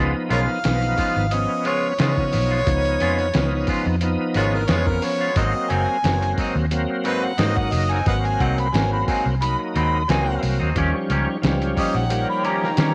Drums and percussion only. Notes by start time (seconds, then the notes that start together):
0.30 closed hi-hat
0.64 snare, closed hi-hat
0.82 closed hi-hat
0.98 kick, open hi-hat
1.31 closed hi-hat
1.65 closed hi-hat
1.99 snare, closed hi-hat
2.17 kick
2.33 open hi-hat
2.67 kick, closed hi-hat
2.85 closed hi-hat
3.00 closed hi-hat
3.19 closed hi-hat
3.34 snare, closed hi-hat
3.67 kick, open hi-hat
4.01 closed hi-hat
4.34 closed hi-hat
4.54 snare
4.68 snare, closed hi-hat
4.87 kick
5.02 open hi-hat
5.36 kick, closed hi-hat
5.70 closed hi-hat
6.04 snare, closed hi-hat
6.22 closed hi-hat
6.38 kick, open hi-hat
6.71 closed hi-hat
7.05 closed hi-hat
7.38 snare, closed hi-hat
7.57 kick
7.72 open hi-hat
8.06 kick, closed hi-hat
8.25 closed hi-hat
8.40 kick, closed hi-hat
8.58 closed hi-hat
8.74 snare, closed hi-hat
9.08 kick, open hi-hat
9.42 closed hi-hat
9.76 closed hi-hat
10.09 snare, closed hi-hat
10.43 open hi-hat
10.76 kick, closed hi-hat
11.10 closed hi-hat
11.43 snare, closed hi-hat
11.62 closed hi-hat
11.77 kick, open hi-hat
12.10 closed hi-hat
12.45 closed hi-hat
12.64 snare
12.77 snare, closed hi-hat